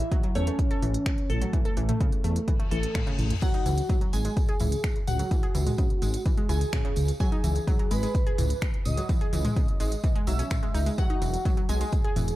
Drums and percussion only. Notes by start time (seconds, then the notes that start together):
0.12 kick, closed hi-hat
0.23 closed hi-hat
0.35 open hi-hat
0.47 closed hi-hat
0.59 kick, closed hi-hat
0.71 closed hi-hat
0.82 open hi-hat, mid tom
0.94 closed hi-hat
1.06 finger snap, kick, closed hi-hat
1.18 closed hi-hat
1.30 open hi-hat, mid tom
1.42 closed hi-hat
1.53 kick, closed hi-hat
1.65 closed hi-hat
1.77 open hi-hat
1.89 closed hi-hat, mid tom
2.01 kick, closed hi-hat
2.12 closed hi-hat
2.24 open hi-hat
2.36 closed hi-hat
2.48 kick, closed hi-hat
2.60 closed hi-hat
2.71 open hi-hat
2.83 closed hi-hat
2.95 finger snap, kick, closed hi-hat, mid tom
3.07 closed hi-hat, high tom
3.19 open hi-hat, mid tom
3.30 closed hi-hat, mid tom
3.42 kick, closed hi-hat, crash, tambourine
3.54 closed hi-hat
3.66 open hi-hat, tambourine
3.77 closed hi-hat, tambourine
3.89 kick, closed hi-hat, tambourine
4.01 closed hi-hat
4.13 open hi-hat, tambourine
4.24 closed hi-hat, tambourine
4.37 kick, closed hi-hat, tambourine
4.49 closed hi-hat
4.60 open hi-hat, mid tom, tambourine
4.72 closed hi-hat, tambourine
4.84 finger snap, kick, closed hi-hat, tambourine
4.96 closed hi-hat
5.07 open hi-hat, mid tom, tambourine
5.19 closed hi-hat, tambourine
5.31 kick, closed hi-hat, tambourine
5.43 closed hi-hat
5.55 open hi-hat, tambourine
5.67 closed hi-hat, mid tom, tambourine
5.78 kick, closed hi-hat, tambourine
5.90 closed hi-hat
6.02 open hi-hat, tambourine
6.14 closed hi-hat, tambourine
6.26 kick, closed hi-hat, tambourine
6.37 closed hi-hat
6.49 open hi-hat, tambourine
6.61 closed hi-hat, tambourine
6.73 finger snap, kick, closed hi-hat, mid tom, tambourine
6.85 closed hi-hat
6.96 open hi-hat, tambourine
7.08 closed hi-hat, tambourine
7.20 kick, closed hi-hat, tambourine
7.32 closed hi-hat
7.44 open hi-hat, tambourine
7.55 closed hi-hat, tambourine
7.67 kick, closed hi-hat, tambourine
7.79 closed hi-hat
7.91 open hi-hat, tambourine
8.03 closed hi-hat, tambourine
8.15 kick, closed hi-hat, tambourine
8.27 closed hi-hat
8.38 open hi-hat, mid tom, tambourine
8.50 closed hi-hat, tambourine
8.61 finger snap, kick, closed hi-hat, tambourine
8.74 closed hi-hat
8.85 open hi-hat, mid tom, tambourine
8.97 closed hi-hat, tambourine
9.09 kick, closed hi-hat, tambourine
9.21 closed hi-hat
9.33 open hi-hat, tambourine
9.45 closed hi-hat, mid tom, tambourine
9.56 kick, closed hi-hat, tambourine
9.68 closed hi-hat
9.80 open hi-hat, tambourine
9.92 closed hi-hat, tambourine
10.04 kick, closed hi-hat, tambourine
10.16 closed hi-hat
10.27 open hi-hat, tambourine
10.39 closed hi-hat, tambourine
10.50 finger snap, kick, closed hi-hat, mid tom, tambourine
10.63 closed hi-hat
10.74 open hi-hat, tambourine
10.86 closed hi-hat, tambourine
10.98 kick, closed hi-hat, tambourine
11.10 closed hi-hat
11.22 open hi-hat, tambourine
11.34 closed hi-hat, tambourine
11.45 kick, closed hi-hat, tambourine
11.57 closed hi-hat
11.69 open hi-hat, tambourine
11.81 closed hi-hat, tambourine
11.92 kick, closed hi-hat, tambourine
12.04 closed hi-hat
12.16 open hi-hat, mid tom, tambourine
12.28 closed hi-hat, tambourine